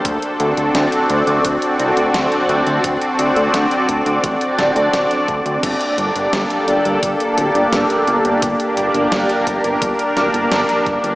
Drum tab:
CC |----------------|----------------|x---------------|----------------|
HH |xxxxxxxxxxxxxxxx|xxxxxxxxxxxxxxxx|xxxxxxxxxxxxxxxx|xxxxxxxxxxxxxxxx|
SD |----o-------o---|----o-----o-o---|----o-------o---|----o-----o-o---|
BD |o-------o-------|o-----o-o-----o-|o-------o-------|o-----o-o-----o-|